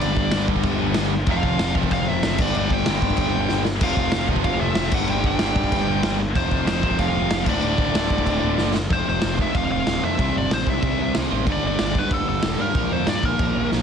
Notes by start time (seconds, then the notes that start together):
Already playing: G2 D3 G3 D5
0.01 G1, crash
0.17 kick
0.32 G1 G2, snare, crash
0.36 D3 G3
0.48 G1, kick
0.56 kick
0.63 G1, kick, crash
0.80 G1 G2 D3 G3
0.94 G1, snare, crash
1.26 F1 F2 C3, kick, crash
1.31 F3 F5
1.43 F1, kick
1.59 F1, snare, crash
1.75 F1 C3 F3, kick
1.80 F2, kick
1.91 F1 F5, kick, crash
2.08 F1 E5
2.23 F#1 F2 C3 F3, snare, crash
2.38 G1 G2 D3 D5, kick, crash
2.44 G3
2.54 G1, crash
2.59 D5
2.70 G5, kick
2.86 G1 G2 D3, snare, crash
2.90 G3
3.02 G1, kick
3.10 kick
3.17 G1, kick, crash
3.35 G1 G2 D3 G3
3.49 G1, snare
3.65 snare
3.81 F1 F2 C3 F5, kick, crash
3.85 F3
3.96 F1, kick
4.12 F1, snare, crash
4.28 F1 F2 C3 F3, kick
4.36 kick
4.44 F1 F5, kick, crash
4.60 F1 E5
4.75 F1 F2 C3 F3, snare, crash
4.92 G1 G2 D3 F#5, kick, crash
4.96 G3
5.07 G1 G5, crash
5.24 G5, kick
5.39 G1 G2 D3, snare, crash
5.44 G3
5.56 G1, kick
5.64 kick
5.72 G1, kick, crash
5.87 G1 G2 D3 G3
6.03 G1, snare, crash
6.35 F1 F2 C3 C5, kick, crash
6.39 F3
6.51 F1, kick
6.66 F1, snare, crash
6.83 F1 F2 C3 F3, kick
6.91 kick
6.99 F1 F5, kick, crash
7.15 F1
7.31 F1 F2 C3 F3, snare, crash
7.46 D1 D2 A2 D3 D5, kick, crash
7.62 D1, crash
7.78 kick
7.94 D1 D2 A2, snare, crash
7.99 D3
8.10 D1, kick
8.18 kick
8.26 D1, kick, crash
8.42 D1 D2 A2 D3
8.58 F#1, snare
8.74 snare
8.90 F1 F2 C3 C5, kick, crash
8.95 F3
9.08 F1 C5
9.22 F1, snare, crash
9.38 C3 F3 E5, kick
9.42 F2
9.55 F1 F5, kick, crash
9.71 F1 F5
9.87 D1, snare, crash
10.02 F2 C3 F3 E5
10.06 F2
10.18 C2 C3 G3 C4, kick, crash
10.37 G1 D5
10.51 A1 C5, snare, crash
10.66 C2 G3 C4 E5, kick
10.71 C3
10.82 C2, kick, crash
11.00 C2
11.15 C2, snare, crash
11.30 A1 G3 C4
11.35 C3
11.46 G1 G2 D3, kick, crash
11.50 G3 D5
11.64 G1 D5
11.79 G1, snare, crash
11.95 G2 D3 G3, kick
11.99 B4
12.11 G1 A4, kick, crash
12.28 G1 A4
12.43 E1, snare, crash
12.59 G2 D3 G3 A#4
12.63 G2
12.74 A#1 A#2 F3 A#3, kick, crash
12.92 F2 C5
13.07 G2 D5, snare, crash
13.23 A#1 A#2 F3 A#3 A#4, kick
13.39 A#1, kick, crash
13.57 A#1
13.72 A#1, snare